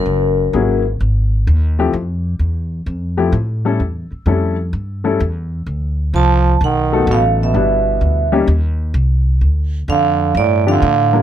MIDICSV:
0, 0, Header, 1, 6, 480
1, 0, Start_track
1, 0, Tempo, 468019
1, 57, Time_signature, 4, 2, 24, 8
1, 11510, End_track
2, 0, Start_track
2, 0, Title_t, "Vibraphone"
2, 0, Program_c, 0, 11
2, 0, Note_on_c, 0, 70, 82
2, 835, Note_off_c, 0, 70, 0
2, 6315, Note_on_c, 0, 81, 102
2, 6755, Note_off_c, 0, 81, 0
2, 6812, Note_on_c, 0, 78, 90
2, 7290, Note_off_c, 0, 78, 0
2, 7299, Note_on_c, 0, 77, 95
2, 7436, Note_off_c, 0, 77, 0
2, 7624, Note_on_c, 0, 76, 74
2, 8522, Note_off_c, 0, 76, 0
2, 10150, Note_on_c, 0, 77, 112
2, 10592, Note_off_c, 0, 77, 0
2, 10639, Note_on_c, 0, 74, 100
2, 10958, Note_on_c, 0, 77, 113
2, 10962, Note_off_c, 0, 74, 0
2, 11510, Note_off_c, 0, 77, 0
2, 11510, End_track
3, 0, Start_track
3, 0, Title_t, "Upright piano"
3, 0, Program_c, 1, 0
3, 545, Note_on_c, 1, 58, 67
3, 551, Note_on_c, 1, 54, 71
3, 554, Note_on_c, 1, 68, 76
3, 556, Note_on_c, 1, 61, 57
3, 557, Note_on_c, 1, 64, 60
3, 832, Note_off_c, 1, 58, 0
3, 835, Note_off_c, 1, 54, 0
3, 837, Note_off_c, 1, 68, 0
3, 838, Note_off_c, 1, 61, 0
3, 838, Note_off_c, 1, 64, 0
3, 1833, Note_on_c, 1, 57, 68
3, 1834, Note_on_c, 1, 60, 73
3, 1835, Note_on_c, 1, 53, 72
3, 1837, Note_on_c, 1, 64, 60
3, 1843, Note_on_c, 1, 67, 85
3, 1969, Note_off_c, 1, 57, 0
3, 1970, Note_off_c, 1, 53, 0
3, 1970, Note_off_c, 1, 60, 0
3, 1971, Note_off_c, 1, 64, 0
3, 1974, Note_off_c, 1, 67, 0
3, 3254, Note_on_c, 1, 53, 70
3, 3256, Note_on_c, 1, 57, 68
3, 3259, Note_on_c, 1, 67, 78
3, 3262, Note_on_c, 1, 64, 60
3, 3265, Note_on_c, 1, 60, 58
3, 3400, Note_off_c, 1, 53, 0
3, 3401, Note_off_c, 1, 57, 0
3, 3402, Note_off_c, 1, 67, 0
3, 3404, Note_off_c, 1, 64, 0
3, 3405, Note_off_c, 1, 60, 0
3, 3743, Note_on_c, 1, 55, 65
3, 3747, Note_on_c, 1, 64, 60
3, 3748, Note_on_c, 1, 57, 61
3, 3751, Note_on_c, 1, 61, 60
3, 3753, Note_on_c, 1, 69, 77
3, 3884, Note_off_c, 1, 55, 0
3, 3886, Note_off_c, 1, 64, 0
3, 3887, Note_off_c, 1, 57, 0
3, 3889, Note_off_c, 1, 61, 0
3, 3889, Note_off_c, 1, 69, 0
3, 4374, Note_on_c, 1, 57, 67
3, 4375, Note_on_c, 1, 55, 66
3, 4379, Note_on_c, 1, 61, 62
3, 4379, Note_on_c, 1, 64, 56
3, 4384, Note_on_c, 1, 69, 76
3, 4668, Note_off_c, 1, 55, 0
3, 4668, Note_off_c, 1, 57, 0
3, 4671, Note_off_c, 1, 61, 0
3, 4671, Note_off_c, 1, 64, 0
3, 4673, Note_off_c, 1, 69, 0
3, 5169, Note_on_c, 1, 57, 57
3, 5170, Note_on_c, 1, 61, 63
3, 5175, Note_on_c, 1, 55, 71
3, 5176, Note_on_c, 1, 69, 76
3, 5177, Note_on_c, 1, 64, 64
3, 5318, Note_off_c, 1, 57, 0
3, 5318, Note_off_c, 1, 61, 0
3, 5321, Note_off_c, 1, 55, 0
3, 5321, Note_off_c, 1, 69, 0
3, 5322, Note_off_c, 1, 64, 0
3, 7102, Note_on_c, 1, 54, 68
3, 7103, Note_on_c, 1, 57, 70
3, 7110, Note_on_c, 1, 59, 62
3, 7110, Note_on_c, 1, 69, 81
3, 7111, Note_on_c, 1, 63, 73
3, 7708, Note_off_c, 1, 54, 0
3, 7709, Note_off_c, 1, 57, 0
3, 7712, Note_off_c, 1, 59, 0
3, 7712, Note_off_c, 1, 69, 0
3, 7713, Note_off_c, 1, 63, 0
3, 7730, Note_on_c, 1, 55, 69
3, 7733, Note_on_c, 1, 59, 61
3, 7738, Note_on_c, 1, 62, 57
3, 7740, Note_on_c, 1, 71, 73
3, 7741, Note_on_c, 1, 64, 59
3, 8474, Note_off_c, 1, 55, 0
3, 8475, Note_off_c, 1, 59, 0
3, 8477, Note_off_c, 1, 62, 0
3, 8478, Note_off_c, 1, 71, 0
3, 8479, Note_off_c, 1, 64, 0
3, 8533, Note_on_c, 1, 55, 84
3, 8536, Note_on_c, 1, 58, 67
3, 8538, Note_on_c, 1, 61, 73
3, 8539, Note_on_c, 1, 63, 66
3, 8542, Note_on_c, 1, 67, 84
3, 8679, Note_off_c, 1, 55, 0
3, 8681, Note_off_c, 1, 58, 0
3, 8682, Note_off_c, 1, 61, 0
3, 8682, Note_off_c, 1, 63, 0
3, 8684, Note_off_c, 1, 67, 0
3, 10937, Note_on_c, 1, 60, 61
3, 10938, Note_on_c, 1, 53, 65
3, 10938, Note_on_c, 1, 62, 65
3, 10940, Note_on_c, 1, 67, 74
3, 10942, Note_on_c, 1, 64, 60
3, 11081, Note_off_c, 1, 53, 0
3, 11081, Note_off_c, 1, 60, 0
3, 11081, Note_off_c, 1, 62, 0
3, 11082, Note_off_c, 1, 67, 0
3, 11083, Note_off_c, 1, 64, 0
3, 11414, Note_on_c, 1, 58, 57
3, 11415, Note_on_c, 1, 55, 60
3, 11415, Note_on_c, 1, 62, 57
3, 11417, Note_on_c, 1, 70, 67
3, 11423, Note_on_c, 1, 64, 59
3, 11510, Note_off_c, 1, 55, 0
3, 11510, Note_off_c, 1, 58, 0
3, 11510, Note_off_c, 1, 62, 0
3, 11510, Note_off_c, 1, 64, 0
3, 11510, Note_off_c, 1, 70, 0
3, 11510, End_track
4, 0, Start_track
4, 0, Title_t, "Trombone"
4, 0, Program_c, 2, 57
4, 0, Note_on_c, 2, 42, 69
4, 824, Note_off_c, 2, 42, 0
4, 6305, Note_on_c, 2, 53, 96
4, 6750, Note_off_c, 2, 53, 0
4, 6810, Note_on_c, 2, 51, 89
4, 7243, Note_off_c, 2, 51, 0
4, 7281, Note_on_c, 2, 47, 74
4, 7422, Note_off_c, 2, 47, 0
4, 7615, Note_on_c, 2, 47, 60
4, 8518, Note_off_c, 2, 47, 0
4, 10145, Note_on_c, 2, 50, 95
4, 10588, Note_off_c, 2, 50, 0
4, 10634, Note_on_c, 2, 45, 92
4, 10927, Note_off_c, 2, 45, 0
4, 10961, Note_on_c, 2, 50, 88
4, 11510, Note_off_c, 2, 50, 0
4, 11510, End_track
5, 0, Start_track
5, 0, Title_t, "Upright bass"
5, 0, Program_c, 3, 32
5, 59, Note_on_c, 3, 30, 76
5, 524, Note_off_c, 3, 30, 0
5, 546, Note_on_c, 3, 32, 77
5, 1008, Note_off_c, 3, 32, 0
5, 1031, Note_on_c, 3, 32, 85
5, 1491, Note_off_c, 3, 32, 0
5, 1510, Note_on_c, 3, 39, 94
5, 1971, Note_off_c, 3, 39, 0
5, 1983, Note_on_c, 3, 41, 86
5, 2447, Note_off_c, 3, 41, 0
5, 2454, Note_on_c, 3, 40, 74
5, 2923, Note_off_c, 3, 40, 0
5, 2936, Note_on_c, 3, 41, 82
5, 3404, Note_off_c, 3, 41, 0
5, 3409, Note_on_c, 3, 45, 90
5, 3880, Note_off_c, 3, 45, 0
5, 3895, Note_on_c, 3, 40, 72
5, 4198, Note_off_c, 3, 40, 0
5, 4366, Note_on_c, 3, 41, 79
5, 4839, Note_off_c, 3, 41, 0
5, 4850, Note_on_c, 3, 43, 88
5, 5321, Note_off_c, 3, 43, 0
5, 5337, Note_on_c, 3, 40, 92
5, 5804, Note_off_c, 3, 40, 0
5, 5809, Note_on_c, 3, 38, 76
5, 6280, Note_off_c, 3, 38, 0
5, 6293, Note_on_c, 3, 36, 90
5, 6762, Note_off_c, 3, 36, 0
5, 6776, Note_on_c, 3, 35, 91
5, 7244, Note_off_c, 3, 35, 0
5, 7251, Note_on_c, 3, 33, 98
5, 7721, Note_off_c, 3, 33, 0
5, 7736, Note_on_c, 3, 31, 77
5, 8203, Note_off_c, 3, 31, 0
5, 8215, Note_on_c, 3, 38, 80
5, 8683, Note_off_c, 3, 38, 0
5, 8691, Note_on_c, 3, 39, 94
5, 9161, Note_off_c, 3, 39, 0
5, 9169, Note_on_c, 3, 36, 93
5, 9640, Note_off_c, 3, 36, 0
5, 9653, Note_on_c, 3, 38, 76
5, 10122, Note_off_c, 3, 38, 0
5, 10133, Note_on_c, 3, 41, 87
5, 10601, Note_off_c, 3, 41, 0
5, 10611, Note_on_c, 3, 43, 91
5, 11080, Note_off_c, 3, 43, 0
5, 11099, Note_on_c, 3, 45, 99
5, 11510, Note_off_c, 3, 45, 0
5, 11510, End_track
6, 0, Start_track
6, 0, Title_t, "Muted upright bass strokes"
6, 4220, Note_on_c, 9, 29, 38
6, 4322, Note_off_c, 9, 29, 0
6, 11510, End_track
0, 0, End_of_file